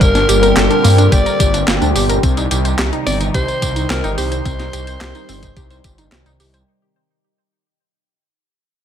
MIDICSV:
0, 0, Header, 1, 6, 480
1, 0, Start_track
1, 0, Key_signature, -3, "minor"
1, 0, Tempo, 555556
1, 10, Time_signature, 4, 2, 24, 8
1, 7644, End_track
2, 0, Start_track
2, 0, Title_t, "Alto saxophone"
2, 0, Program_c, 0, 65
2, 9, Note_on_c, 0, 70, 103
2, 484, Note_off_c, 0, 70, 0
2, 489, Note_on_c, 0, 70, 100
2, 969, Note_on_c, 0, 74, 101
2, 982, Note_off_c, 0, 70, 0
2, 1449, Note_off_c, 0, 74, 0
2, 2651, Note_on_c, 0, 74, 102
2, 2758, Note_off_c, 0, 74, 0
2, 2890, Note_on_c, 0, 72, 115
2, 3336, Note_off_c, 0, 72, 0
2, 3370, Note_on_c, 0, 70, 96
2, 3593, Note_off_c, 0, 70, 0
2, 3610, Note_on_c, 0, 72, 110
2, 5255, Note_off_c, 0, 72, 0
2, 7644, End_track
3, 0, Start_track
3, 0, Title_t, "Synth arpeggio sound"
3, 0, Program_c, 1, 84
3, 8, Note_on_c, 1, 58, 81
3, 123, Note_off_c, 1, 58, 0
3, 128, Note_on_c, 1, 62, 78
3, 210, Note_off_c, 1, 62, 0
3, 248, Note_on_c, 1, 67, 80
3, 330, Note_off_c, 1, 67, 0
3, 368, Note_on_c, 1, 70, 79
3, 483, Note_off_c, 1, 70, 0
3, 488, Note_on_c, 1, 67, 85
3, 603, Note_off_c, 1, 67, 0
3, 608, Note_on_c, 1, 62, 76
3, 690, Note_off_c, 1, 62, 0
3, 728, Note_on_c, 1, 58, 79
3, 778, Note_off_c, 1, 58, 0
3, 848, Note_on_c, 1, 62, 78
3, 930, Note_off_c, 1, 62, 0
3, 969, Note_on_c, 1, 67, 84
3, 1083, Note_off_c, 1, 67, 0
3, 1088, Note_on_c, 1, 70, 76
3, 1203, Note_off_c, 1, 70, 0
3, 1208, Note_on_c, 1, 67, 79
3, 1290, Note_off_c, 1, 67, 0
3, 1328, Note_on_c, 1, 62, 80
3, 1443, Note_off_c, 1, 62, 0
3, 1449, Note_on_c, 1, 58, 85
3, 1563, Note_off_c, 1, 58, 0
3, 1569, Note_on_c, 1, 62, 102
3, 1618, Note_off_c, 1, 62, 0
3, 1689, Note_on_c, 1, 67, 85
3, 1738, Note_off_c, 1, 67, 0
3, 1809, Note_on_c, 1, 70, 77
3, 1890, Note_off_c, 1, 70, 0
3, 1929, Note_on_c, 1, 60, 84
3, 2043, Note_off_c, 1, 60, 0
3, 2049, Note_on_c, 1, 63, 73
3, 2131, Note_off_c, 1, 63, 0
3, 2169, Note_on_c, 1, 67, 80
3, 2251, Note_off_c, 1, 67, 0
3, 2289, Note_on_c, 1, 72, 80
3, 2403, Note_off_c, 1, 72, 0
3, 2409, Note_on_c, 1, 67, 86
3, 2523, Note_off_c, 1, 67, 0
3, 2529, Note_on_c, 1, 63, 81
3, 2611, Note_off_c, 1, 63, 0
3, 2649, Note_on_c, 1, 60, 80
3, 2698, Note_off_c, 1, 60, 0
3, 2769, Note_on_c, 1, 63, 79
3, 2850, Note_off_c, 1, 63, 0
3, 2888, Note_on_c, 1, 67, 83
3, 3003, Note_off_c, 1, 67, 0
3, 3009, Note_on_c, 1, 72, 75
3, 3123, Note_off_c, 1, 72, 0
3, 3129, Note_on_c, 1, 67, 76
3, 3210, Note_off_c, 1, 67, 0
3, 3249, Note_on_c, 1, 63, 83
3, 3363, Note_off_c, 1, 63, 0
3, 3369, Note_on_c, 1, 60, 85
3, 3483, Note_off_c, 1, 60, 0
3, 3488, Note_on_c, 1, 63, 105
3, 3538, Note_off_c, 1, 63, 0
3, 3608, Note_on_c, 1, 67, 85
3, 3658, Note_off_c, 1, 67, 0
3, 3729, Note_on_c, 1, 72, 80
3, 3810, Note_off_c, 1, 72, 0
3, 3849, Note_on_c, 1, 60, 82
3, 3963, Note_off_c, 1, 60, 0
3, 3969, Note_on_c, 1, 63, 76
3, 4050, Note_off_c, 1, 63, 0
3, 4089, Note_on_c, 1, 67, 76
3, 4170, Note_off_c, 1, 67, 0
3, 4209, Note_on_c, 1, 72, 81
3, 4323, Note_off_c, 1, 72, 0
3, 4330, Note_on_c, 1, 67, 85
3, 4443, Note_off_c, 1, 67, 0
3, 4450, Note_on_c, 1, 63, 78
3, 4531, Note_off_c, 1, 63, 0
3, 4569, Note_on_c, 1, 60, 77
3, 4618, Note_off_c, 1, 60, 0
3, 4689, Note_on_c, 1, 63, 78
3, 4771, Note_off_c, 1, 63, 0
3, 4810, Note_on_c, 1, 67, 85
3, 4923, Note_off_c, 1, 67, 0
3, 4930, Note_on_c, 1, 72, 81
3, 5044, Note_off_c, 1, 72, 0
3, 5049, Note_on_c, 1, 67, 78
3, 5131, Note_off_c, 1, 67, 0
3, 5169, Note_on_c, 1, 63, 83
3, 5283, Note_off_c, 1, 63, 0
3, 5289, Note_on_c, 1, 60, 81
3, 5403, Note_off_c, 1, 60, 0
3, 5409, Note_on_c, 1, 63, 102
3, 5458, Note_off_c, 1, 63, 0
3, 5530, Note_on_c, 1, 67, 82
3, 5578, Note_off_c, 1, 67, 0
3, 5649, Note_on_c, 1, 72, 74
3, 5731, Note_off_c, 1, 72, 0
3, 7644, End_track
4, 0, Start_track
4, 0, Title_t, "Analog synth pad"
4, 0, Program_c, 2, 89
4, 0, Note_on_c, 2, 46, 78
4, 0, Note_on_c, 2, 50, 73
4, 0, Note_on_c, 2, 55, 73
4, 0, Note_on_c, 2, 67, 89
4, 8, Note_on_c, 2, 60, 75
4, 1894, Note_off_c, 2, 46, 0
4, 1894, Note_off_c, 2, 50, 0
4, 1909, Note_off_c, 2, 60, 0
4, 1930, Note_on_c, 2, 48, 81
4, 1930, Note_on_c, 2, 51, 75
4, 1930, Note_on_c, 2, 63, 78
4, 5734, Note_off_c, 2, 55, 0
4, 5735, Note_off_c, 2, 48, 0
4, 5735, Note_off_c, 2, 51, 0
4, 5735, Note_off_c, 2, 63, 0
4, 5735, Note_off_c, 2, 67, 0
4, 7644, End_track
5, 0, Start_track
5, 0, Title_t, "Detuned saw bass"
5, 0, Program_c, 3, 39
5, 9, Note_on_c, 3, 31, 100
5, 208, Note_off_c, 3, 31, 0
5, 249, Note_on_c, 3, 31, 101
5, 448, Note_off_c, 3, 31, 0
5, 488, Note_on_c, 3, 31, 82
5, 588, Note_off_c, 3, 31, 0
5, 728, Note_on_c, 3, 43, 100
5, 928, Note_off_c, 3, 43, 0
5, 969, Note_on_c, 3, 31, 106
5, 1069, Note_off_c, 3, 31, 0
5, 1209, Note_on_c, 3, 31, 81
5, 1408, Note_off_c, 3, 31, 0
5, 1449, Note_on_c, 3, 31, 85
5, 1549, Note_off_c, 3, 31, 0
5, 1569, Note_on_c, 3, 38, 106
5, 1668, Note_off_c, 3, 38, 0
5, 1689, Note_on_c, 3, 31, 85
5, 1888, Note_off_c, 3, 31, 0
5, 1929, Note_on_c, 3, 36, 99
5, 2128, Note_off_c, 3, 36, 0
5, 2168, Note_on_c, 3, 36, 99
5, 2368, Note_off_c, 3, 36, 0
5, 2409, Note_on_c, 3, 36, 79
5, 2509, Note_off_c, 3, 36, 0
5, 2648, Note_on_c, 3, 31, 99
5, 2847, Note_off_c, 3, 31, 0
5, 2890, Note_on_c, 3, 36, 107
5, 2989, Note_off_c, 3, 36, 0
5, 3130, Note_on_c, 3, 36, 80
5, 3328, Note_off_c, 3, 36, 0
5, 3369, Note_on_c, 3, 36, 82
5, 3469, Note_off_c, 3, 36, 0
5, 3489, Note_on_c, 3, 31, 105
5, 3589, Note_off_c, 3, 31, 0
5, 3609, Note_on_c, 3, 36, 83
5, 3808, Note_off_c, 3, 36, 0
5, 3850, Note_on_c, 3, 36, 99
5, 4048, Note_off_c, 3, 36, 0
5, 4089, Note_on_c, 3, 36, 95
5, 4288, Note_off_c, 3, 36, 0
5, 4329, Note_on_c, 3, 36, 84
5, 4429, Note_off_c, 3, 36, 0
5, 4569, Note_on_c, 3, 31, 106
5, 4768, Note_off_c, 3, 31, 0
5, 4809, Note_on_c, 3, 36, 94
5, 5008, Note_off_c, 3, 36, 0
5, 5049, Note_on_c, 3, 31, 100
5, 5248, Note_off_c, 3, 31, 0
5, 5289, Note_on_c, 3, 36, 97
5, 5389, Note_off_c, 3, 36, 0
5, 5409, Note_on_c, 3, 36, 84
5, 5509, Note_off_c, 3, 36, 0
5, 5529, Note_on_c, 3, 36, 78
5, 5728, Note_off_c, 3, 36, 0
5, 7644, End_track
6, 0, Start_track
6, 0, Title_t, "Drums"
6, 9, Note_on_c, 9, 36, 120
6, 10, Note_on_c, 9, 42, 51
6, 10, Note_on_c, 9, 54, 42
6, 95, Note_off_c, 9, 36, 0
6, 97, Note_off_c, 9, 42, 0
6, 97, Note_off_c, 9, 54, 0
6, 130, Note_on_c, 9, 38, 36
6, 130, Note_on_c, 9, 42, 25
6, 130, Note_on_c, 9, 54, 28
6, 217, Note_off_c, 9, 38, 0
6, 217, Note_off_c, 9, 42, 0
6, 217, Note_off_c, 9, 54, 0
6, 251, Note_on_c, 9, 42, 91
6, 251, Note_on_c, 9, 54, 79
6, 337, Note_off_c, 9, 42, 0
6, 337, Note_off_c, 9, 54, 0
6, 370, Note_on_c, 9, 42, 49
6, 370, Note_on_c, 9, 54, 31
6, 457, Note_off_c, 9, 42, 0
6, 457, Note_off_c, 9, 54, 0
6, 490, Note_on_c, 9, 38, 112
6, 490, Note_on_c, 9, 39, 90
6, 490, Note_on_c, 9, 42, 48
6, 490, Note_on_c, 9, 54, 40
6, 576, Note_off_c, 9, 38, 0
6, 576, Note_off_c, 9, 39, 0
6, 576, Note_off_c, 9, 42, 0
6, 576, Note_off_c, 9, 54, 0
6, 610, Note_on_c, 9, 42, 26
6, 696, Note_off_c, 9, 42, 0
6, 730, Note_on_c, 9, 46, 85
6, 730, Note_on_c, 9, 54, 76
6, 816, Note_off_c, 9, 46, 0
6, 816, Note_off_c, 9, 54, 0
6, 850, Note_on_c, 9, 42, 54
6, 850, Note_on_c, 9, 54, 33
6, 936, Note_off_c, 9, 42, 0
6, 936, Note_off_c, 9, 54, 0
6, 969, Note_on_c, 9, 36, 120
6, 970, Note_on_c, 9, 42, 51
6, 970, Note_on_c, 9, 54, 44
6, 1056, Note_off_c, 9, 36, 0
6, 1057, Note_off_c, 9, 42, 0
6, 1057, Note_off_c, 9, 54, 0
6, 1090, Note_on_c, 9, 42, 24
6, 1090, Note_on_c, 9, 54, 28
6, 1177, Note_off_c, 9, 42, 0
6, 1177, Note_off_c, 9, 54, 0
6, 1209, Note_on_c, 9, 36, 107
6, 1210, Note_on_c, 9, 42, 96
6, 1210, Note_on_c, 9, 54, 79
6, 1296, Note_off_c, 9, 36, 0
6, 1297, Note_off_c, 9, 42, 0
6, 1297, Note_off_c, 9, 54, 0
6, 1330, Note_on_c, 9, 42, 53
6, 1330, Note_on_c, 9, 54, 32
6, 1417, Note_off_c, 9, 42, 0
6, 1417, Note_off_c, 9, 54, 0
6, 1450, Note_on_c, 9, 38, 122
6, 1450, Note_on_c, 9, 39, 97
6, 1450, Note_on_c, 9, 42, 52
6, 1450, Note_on_c, 9, 54, 42
6, 1537, Note_off_c, 9, 38, 0
6, 1537, Note_off_c, 9, 39, 0
6, 1537, Note_off_c, 9, 42, 0
6, 1537, Note_off_c, 9, 54, 0
6, 1570, Note_on_c, 9, 42, 26
6, 1570, Note_on_c, 9, 54, 28
6, 1657, Note_off_c, 9, 42, 0
6, 1657, Note_off_c, 9, 54, 0
6, 1690, Note_on_c, 9, 46, 78
6, 1690, Note_on_c, 9, 54, 74
6, 1776, Note_off_c, 9, 46, 0
6, 1776, Note_off_c, 9, 54, 0
6, 1810, Note_on_c, 9, 42, 54
6, 1810, Note_on_c, 9, 54, 32
6, 1897, Note_off_c, 9, 42, 0
6, 1897, Note_off_c, 9, 54, 0
6, 1930, Note_on_c, 9, 36, 115
6, 1930, Note_on_c, 9, 42, 57
6, 1930, Note_on_c, 9, 54, 45
6, 2016, Note_off_c, 9, 36, 0
6, 2017, Note_off_c, 9, 42, 0
6, 2017, Note_off_c, 9, 54, 0
6, 2050, Note_on_c, 9, 42, 26
6, 2050, Note_on_c, 9, 54, 30
6, 2136, Note_off_c, 9, 42, 0
6, 2136, Note_off_c, 9, 54, 0
6, 2170, Note_on_c, 9, 42, 99
6, 2170, Note_on_c, 9, 54, 76
6, 2256, Note_off_c, 9, 42, 0
6, 2256, Note_off_c, 9, 54, 0
6, 2290, Note_on_c, 9, 42, 49
6, 2290, Note_on_c, 9, 54, 29
6, 2376, Note_off_c, 9, 42, 0
6, 2376, Note_off_c, 9, 54, 0
6, 2409, Note_on_c, 9, 38, 108
6, 2409, Note_on_c, 9, 39, 94
6, 2409, Note_on_c, 9, 42, 50
6, 2409, Note_on_c, 9, 54, 39
6, 2495, Note_off_c, 9, 38, 0
6, 2495, Note_off_c, 9, 39, 0
6, 2495, Note_off_c, 9, 42, 0
6, 2495, Note_off_c, 9, 54, 0
6, 2530, Note_on_c, 9, 42, 25
6, 2616, Note_off_c, 9, 42, 0
6, 2649, Note_on_c, 9, 46, 89
6, 2649, Note_on_c, 9, 54, 70
6, 2736, Note_off_c, 9, 46, 0
6, 2736, Note_off_c, 9, 54, 0
6, 2770, Note_on_c, 9, 42, 58
6, 2770, Note_on_c, 9, 54, 34
6, 2856, Note_off_c, 9, 42, 0
6, 2856, Note_off_c, 9, 54, 0
6, 2890, Note_on_c, 9, 36, 116
6, 2890, Note_on_c, 9, 42, 53
6, 2890, Note_on_c, 9, 54, 41
6, 2976, Note_off_c, 9, 36, 0
6, 2976, Note_off_c, 9, 42, 0
6, 2976, Note_off_c, 9, 54, 0
6, 3010, Note_on_c, 9, 42, 25
6, 3010, Note_on_c, 9, 54, 28
6, 3096, Note_off_c, 9, 42, 0
6, 3096, Note_off_c, 9, 54, 0
6, 3130, Note_on_c, 9, 36, 98
6, 3131, Note_on_c, 9, 42, 97
6, 3131, Note_on_c, 9, 54, 74
6, 3216, Note_off_c, 9, 36, 0
6, 3217, Note_off_c, 9, 42, 0
6, 3217, Note_off_c, 9, 54, 0
6, 3250, Note_on_c, 9, 42, 55
6, 3250, Note_on_c, 9, 54, 32
6, 3336, Note_off_c, 9, 42, 0
6, 3336, Note_off_c, 9, 54, 0
6, 3371, Note_on_c, 9, 38, 116
6, 3371, Note_on_c, 9, 39, 104
6, 3371, Note_on_c, 9, 42, 52
6, 3371, Note_on_c, 9, 54, 42
6, 3457, Note_off_c, 9, 38, 0
6, 3457, Note_off_c, 9, 39, 0
6, 3457, Note_off_c, 9, 42, 0
6, 3457, Note_off_c, 9, 54, 0
6, 3490, Note_on_c, 9, 42, 26
6, 3490, Note_on_c, 9, 54, 29
6, 3577, Note_off_c, 9, 42, 0
6, 3577, Note_off_c, 9, 54, 0
6, 3610, Note_on_c, 9, 46, 84
6, 3610, Note_on_c, 9, 54, 69
6, 3696, Note_off_c, 9, 46, 0
6, 3696, Note_off_c, 9, 54, 0
6, 3730, Note_on_c, 9, 42, 55
6, 3730, Note_on_c, 9, 54, 32
6, 3817, Note_off_c, 9, 42, 0
6, 3817, Note_off_c, 9, 54, 0
6, 3849, Note_on_c, 9, 36, 114
6, 3850, Note_on_c, 9, 42, 56
6, 3850, Note_on_c, 9, 54, 40
6, 3936, Note_off_c, 9, 36, 0
6, 3936, Note_off_c, 9, 42, 0
6, 3936, Note_off_c, 9, 54, 0
6, 3970, Note_on_c, 9, 38, 36
6, 3970, Note_on_c, 9, 42, 26
6, 3970, Note_on_c, 9, 54, 28
6, 4056, Note_off_c, 9, 38, 0
6, 4056, Note_off_c, 9, 42, 0
6, 4056, Note_off_c, 9, 54, 0
6, 4090, Note_on_c, 9, 42, 98
6, 4090, Note_on_c, 9, 54, 71
6, 4176, Note_off_c, 9, 42, 0
6, 4176, Note_off_c, 9, 54, 0
6, 4210, Note_on_c, 9, 42, 53
6, 4210, Note_on_c, 9, 54, 29
6, 4296, Note_off_c, 9, 42, 0
6, 4296, Note_off_c, 9, 54, 0
6, 4330, Note_on_c, 9, 38, 111
6, 4330, Note_on_c, 9, 39, 97
6, 4330, Note_on_c, 9, 42, 51
6, 4330, Note_on_c, 9, 54, 36
6, 4416, Note_off_c, 9, 38, 0
6, 4416, Note_off_c, 9, 39, 0
6, 4416, Note_off_c, 9, 42, 0
6, 4416, Note_off_c, 9, 54, 0
6, 4449, Note_on_c, 9, 42, 27
6, 4449, Note_on_c, 9, 54, 28
6, 4535, Note_off_c, 9, 42, 0
6, 4535, Note_off_c, 9, 54, 0
6, 4569, Note_on_c, 9, 46, 87
6, 4569, Note_on_c, 9, 54, 71
6, 4655, Note_off_c, 9, 46, 0
6, 4655, Note_off_c, 9, 54, 0
6, 4689, Note_on_c, 9, 36, 63
6, 4689, Note_on_c, 9, 42, 58
6, 4689, Note_on_c, 9, 54, 31
6, 4775, Note_off_c, 9, 42, 0
6, 4775, Note_off_c, 9, 54, 0
6, 4776, Note_off_c, 9, 36, 0
6, 4809, Note_on_c, 9, 36, 118
6, 4809, Note_on_c, 9, 42, 55
6, 4809, Note_on_c, 9, 54, 39
6, 4895, Note_off_c, 9, 42, 0
6, 4895, Note_off_c, 9, 54, 0
6, 4896, Note_off_c, 9, 36, 0
6, 4929, Note_on_c, 9, 42, 26
6, 4929, Note_on_c, 9, 54, 27
6, 5015, Note_off_c, 9, 42, 0
6, 5015, Note_off_c, 9, 54, 0
6, 5048, Note_on_c, 9, 42, 101
6, 5048, Note_on_c, 9, 54, 69
6, 5049, Note_on_c, 9, 36, 107
6, 5134, Note_off_c, 9, 42, 0
6, 5134, Note_off_c, 9, 54, 0
6, 5136, Note_off_c, 9, 36, 0
6, 5169, Note_on_c, 9, 42, 57
6, 5169, Note_on_c, 9, 54, 31
6, 5255, Note_off_c, 9, 42, 0
6, 5255, Note_off_c, 9, 54, 0
6, 5289, Note_on_c, 9, 38, 118
6, 5289, Note_on_c, 9, 39, 97
6, 5289, Note_on_c, 9, 42, 54
6, 5289, Note_on_c, 9, 54, 39
6, 5375, Note_off_c, 9, 38, 0
6, 5375, Note_off_c, 9, 39, 0
6, 5375, Note_off_c, 9, 42, 0
6, 5375, Note_off_c, 9, 54, 0
6, 5409, Note_on_c, 9, 42, 26
6, 5409, Note_on_c, 9, 54, 27
6, 5495, Note_off_c, 9, 42, 0
6, 5495, Note_off_c, 9, 54, 0
6, 5529, Note_on_c, 9, 46, 83
6, 5529, Note_on_c, 9, 54, 66
6, 5615, Note_off_c, 9, 46, 0
6, 5615, Note_off_c, 9, 54, 0
6, 5650, Note_on_c, 9, 42, 56
6, 5650, Note_on_c, 9, 54, 30
6, 5736, Note_off_c, 9, 42, 0
6, 5736, Note_off_c, 9, 54, 0
6, 7644, End_track
0, 0, End_of_file